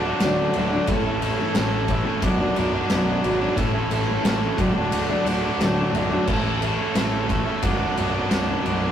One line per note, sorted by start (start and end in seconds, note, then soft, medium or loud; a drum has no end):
0.00 0.11 D1 medium
0.00 0.19 D3 medium
0.00 0.21 F#3 medium
0.00 0.20 A3 medium
0.00 0.21 D4 medium
0.05 0.22 D3 medium
0.05 0.22 F#3 medium
0.05 0.23 A3 medium
0.05 0.23 D4 medium
0.05 muted steel-string acoustic guitar stroke soft
0.19 0.45 D1 medium
0.19 0.71 D2 medium
0.19 0.71 A2 medium
0.19 0.38 D3 medium
0.19 0.37 F#3 medium
0.19 0.36 A3 medium
0.19 0.35 D4 medium
0.19 snare loud
0.19 ride medium
0.36 0.52 D3 medium
0.36 0.52 F#3 medium
0.36 0.53 A3 medium
0.36 0.54 D4 medium
0.53 0.79 D1 medium
0.53 0.74 D3 medium
0.53 0.72 F#3 medium
0.53 0.72 A3 medium
0.53 0.71 D4 medium
0.53 ride medium
0.72 0.88 D3 medium
0.72 0.87 F#3 medium
0.72 0.87 A3 medium
0.72 0.86 D4 medium
0.87 1.34 A1 loud
0.87 1.53 A2 medium
0.87 1.54 E3 medium
0.87 1.39 A3 loud
0.87 1.38 C#4 medium
0.87 1.37 E4 medium
0.87 1.36 A4 loud
0.87 kick loud
0.87 ride medium
1.05 1.19 A3 medium
1.05 1.21 C#4 medium
1.05 1.21 E4 medium
1.05 1.22 A4 medium
1.20 1.55 A3 medium
1.20 1.56 C#4 medium
1.20 1.56 E4 medium
1.20 1.57 A4 medium
1.20 ride medium
1.37 1.55 A3 medium
1.37 1.54 C#4 medium
1.37 1.55 E4 medium
1.37 1.56 A4 medium
1.54 2.02 A1 medium
1.54 2.06 A2 loud
1.54 2.06 E3 medium
1.54 1.73 A3 loud
1.54 1.72 C#4 loud
1.54 1.71 E4 loud
1.54 1.71 A4 loud
1.54 snare loud
1.54 ride loud
1.72 1.88 A3 medium
1.72 1.89 C#4 medium
1.72 1.88 E4 medium
1.72 1.89 A4 medium
1.88 2.07 A3 medium
1.88 2.06 C#4 medium
1.88 2.05 E4 medium
1.88 2.04 A4 medium
1.88 muted distorted electric guitar stroke medium
1.88 kick medium
1.88 ride medium
2.05 2.22 A3 medium
2.05 2.21 C#4 medium
2.05 2.21 E4 medium
2.05 2.20 A4 medium
2.05 muted steel-string acoustic guitar stroke soft
2.22 2.46 B0 medium
2.22 2.73 B1 medium
2.22 2.55 F#2 medium
2.22 2.40 B2 loud
2.22 2.39 F#3 medium
2.22 2.37 D4 medium
2.22 kick loud
2.22 ride medium
2.38 2.57 B2 medium
2.38 2.58 F#3 medium
2.38 2.58 D4 medium
2.56 2.80 B0 medium
2.56 2.87 F#2 medium
2.56 2.88 B2 medium
2.56 2.89 F#3 medium
2.56 2.89 D4 medium
2.56 ride medium
2.70 2.89 B2 medium
2.70 2.90 F#3 medium
2.70 2.90 D4 medium
2.70 muted steel-string acoustic guitar stroke medium
2.88 3.14 B0 medium
2.88 3.40 B1 medium
2.88 3.20 F#2 medium
2.88 3.08 B2 medium
2.88 3.06 F#3 medium
2.88 3.05 D4 medium
2.88 snare loud
2.88 ride loud
3.06 3.21 B2 medium
3.06 3.22 F#3 medium
3.06 3.23 D4 medium
3.21 3.47 G#1 medium
3.21 3.54 F#2 medium
3.21 3.40 B2 medium
3.21 3.39 F#3 medium
3.21 3.37 D4 medium
3.21 ride medium
3.38 3.55 B2 medium
3.38 3.55 F#3 medium
3.38 3.55 D4 medium
3.55 3.81 A1 medium
3.55 4.21 A2 medium
3.55 4.22 E3 medium
3.55 4.08 A3 loud
3.55 4.07 C#4 medium
3.55 4.06 E4 medium
3.55 4.04 A4 medium
3.55 kick loud
3.55 ride medium
3.72 3.89 A3 medium
3.72 3.90 C#4 medium
3.72 3.91 E4 medium
3.72 3.92 A4 medium
3.90 4.15 A1 medium
3.90 4.23 A3 medium
3.90 4.24 C#4 medium
3.90 4.24 E4 medium
3.90 4.25 A4 medium
3.90 ride medium
4.05 4.23 A3 medium
4.05 4.22 C#4 medium
4.05 4.24 E4 medium
4.05 4.24 A4 medium
4.22 4.48 A1 medium
4.22 4.54 A2 medium
4.22 4.54 E3 loud
4.22 4.41 A3 medium
4.22 4.40 C#4 loud
4.22 4.39 E4 loud
4.22 4.38 A4 loud
4.22 snare loud
4.22 ride loud
4.39 4.55 A3 medium
4.39 4.56 C#4 medium
4.39 4.56 E4 medium
4.39 4.56 A4 medium
4.54 5.07 D2 medium
4.54 5.08 A2 medium
4.54 4.74 D3 medium
4.54 4.72 F#3 loud
4.54 4.72 A3 loud
4.54 4.70 D4 loud
4.58 4.82 D1 medium
4.58 4.73 D4 medium
4.58 kick loud
4.58 ride medium
4.72 5.08 D3 medium
4.72 5.07 F#3 medium
4.72 5.06 A3 medium
4.72 5.05 D4 medium
4.72 muted steel-string acoustic guitar stroke soft
4.90 5.15 D1 medium
4.90 ride medium
5.06 5.22 D3 medium
5.06 5.22 F#3 medium
5.06 5.24 A3 medium
5.06 5.25 D4 medium
5.23 5.48 D1 medium
5.23 5.56 D3 medium
5.23 5.57 F#3 medium
5.23 5.57 A3 medium
5.23 5.58 D4 medium
5.23 ride medium
5.43 5.59 D3 medium
5.43 5.60 F#3 medium
5.43 5.60 A3 medium
5.43 5.61 D4 medium
5.43 muted steel-string acoustic guitar stroke soft
5.57 5.82 D1 medium
5.57 6.09 D2 medium
5.57 6.09 A2 medium
5.57 5.76 D3 medium
5.57 5.76 F#3 medium
5.57 5.74 A3 medium
5.57 5.74 D4 medium
5.57 snare loud
5.57 ride medium
5.75 5.91 D3 soft
5.75 5.93 F#3 medium
5.75 5.93 A3 medium
5.75 5.94 D4 medium
5.92 6.16 B0 medium
5.92 6.12 D3 medium
5.92 6.11 F#3 medium
5.92 6.09 A3 medium
5.92 6.09 D4 medium
5.92 ride medium
6.10 6.27 D3 medium
6.10 6.26 F#3 medium
6.10 6.26 A3 medium
6.10 6.25 D4 medium
6.27 6.74 A1 medium
6.27 6.92 A2 medium
6.27 6.93 E3 medium
6.27 6.79 A3 loud
6.27 6.78 C#4 medium
6.27 6.77 E4 medium
6.27 6.76 A4 medium
6.27 kick loud
6.27 crash medium
6.44 6.59 A3 medium
6.44 6.61 C#4 medium
6.44 6.62 E4 medium
6.44 6.63 A4 medium
6.60 6.95 A3 medium
6.60 6.96 C#4 medium
6.60 6.96 E4 medium
6.60 6.96 A4 medium
6.60 ride medium
6.77 6.93 A3 medium
6.77 6.94 C#4 medium
6.77 6.94 E4 medium
6.77 6.96 A4 medium
6.93 7.42 A1 medium
6.93 7.45 A2 medium
6.93 7.46 E3 loud
6.93 7.12 A3 medium
6.93 7.12 C#4 loud
6.93 7.10 E4 medium
6.93 7.09 A4 loud
6.93 snare loud
6.93 ride loud
7.10 7.27 A3 medium
7.10 7.28 C#4 medium
7.10 7.28 E4 medium
7.10 7.28 A4 medium
7.28 7.47 A3 medium
7.28 7.46 C#4 medium
7.28 7.45 E4 medium
7.28 7.44 A4 medium
7.28 muted distorted electric guitar stroke medium
7.28 kick medium
7.28 ride medium
7.44 7.61 A3 medium
7.44 7.61 C#4 medium
7.44 7.61 E4 medium
7.44 7.60 A4 medium
7.60 7.86 B0 medium
7.60 8.13 B1 medium
7.60 7.95 F#2 medium
7.60 7.80 B2 medium
7.60 7.79 F#3 loud
7.60 7.78 D4 medium
7.60 kick loud
7.60 ride medium
7.79 7.96 B2 medium
7.79 7.97 F#3 medium
7.79 7.98 D4 medium
7.96 8.21 B0 medium
7.96 8.30 F#2 medium
7.96 8.30 B2 medium
7.96 8.31 F#3 medium
7.96 8.31 D4 medium
7.96 ride medium
8.12 8.29 B2 medium
8.12 8.30 F#3 medium
8.12 8.30 D4 medium
8.30 8.55 B0 medium
8.30 8.81 B1 medium
8.30 8.61 F#2 medium
8.30 8.48 B2 medium
8.30 8.46 F#3 medium
8.30 8.45 D4 medium
8.30 snare loud
8.30 ride medium
8.47 8.62 B2 medium
8.47 8.63 F#3 medium
8.47 8.64 D4 medium
8.62 8.88 B0 medium
8.62 8.92 F#2 medium
8.62 8.81 B2 medium
8.62 8.80 F#3 medium
8.62 8.78 D4 medium
8.62 ride medium
8.79 8.92 B2 medium
8.79 8.92 F#3 medium
8.79 8.92 D4 medium